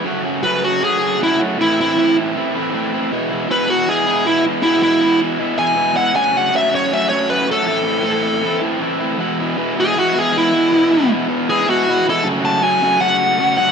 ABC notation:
X:1
M:4/4
L:1/8
Q:1/4=158
K:F#dor
V:1 name="Lead electric guitar"
z2 B F G2 E z | E E2 z4 z | z2 B F G2 E z | E E2 z2 g2 f |
g f e c e c B A- | A4- A z3 | z3 G F G E2- | E2 z2 G F2 A |
z a g2 f3 f |]
V:2 name="Overdriven electric guitar"
[F,,C,F,A,CF] [F,A,CF] [F,,C,F,A,CF] [F,A,CF] [F,A,CF] [F,,C,F,A,CF] [F,A,CF] [F,A,CF] | [A,,E,A,=CE] [A,CE] [A,,E,A,CE] [A,CE] [E,A,CE] [A,,E,A,CE] [E,A,CE] [A,CE] | [E,,B,,E,G,B,E] [E,G,B,E] [E,,B,,E,G,B,E] [E,G,B,E] [E,G,B,E] [E,,B,,E,G,B,E] [E,G,B,E] [E,G,B,E] | [E,,B,,E,G,B,E] [E,G,B,E] [E,,B,,E,G,B,E] [E,G,B,E] [E,G,B,E] [E,,B,,E,G,B,E] [E,G,B,E] [E,G,B,E] |
[F,,C,F,A,CF] [F,A,CF] [F,,C,F,A,CF] [F,A,CF] [F,A,CF] [F,,C,F,A,CF] [F,A,CF] [F,A,CF] | [A,,E,A,=CE] [A,CE] [A,,E,A,CE] [A,CE] [E,A,CE] [A,,E,A,CE] [E,A,CE] [A,CE] | [E,,B,,E,G,B,E] [E,G,B,E] [E,,B,,E,G,B,E] [E,G,B,E] [E,G,B,E] [E,,B,,E,G,B,E] [E,G,B,E] [E,G,B,E] | [E,,B,,E,G,B,E] [E,G,B,E] [E,,B,,E,G,B,E] [E,G,B,E] [E,G,B,E] [E,,B,,E,G,B,E] [E,G,B,E] [E,G,B,E] |
[F,,C,F,A,CF]2 [F,,C,F,A,CF] [F,,C,F,A,CF] [F,,C,F,A,CF]2 [F,,C,F,A,CF] [F,,C,F,A,CF] |]